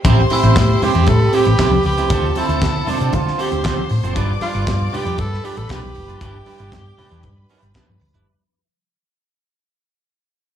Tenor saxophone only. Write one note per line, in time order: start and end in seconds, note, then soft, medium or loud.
0.33 0.85 E4 loud
0.83 1.10 G4 loud
1.09 1.36 A4 loud
1.35 1.85 G4 loud
1.86 2.40 G4 loud
2.38 2.91 E4 loud
2.89 3.16 D4 medium
3.15 3.42 F4 loud
3.41 3.91 G4 loud
4.42 4.95 F4 loud
4.93 5.21 G4 loud
5.20 5.46 A4 loud
5.45 5.59 G4 loud
5.57 5.72 A4 loud
5.71 6.21 G4 loud
6.22 7.71 G4 loud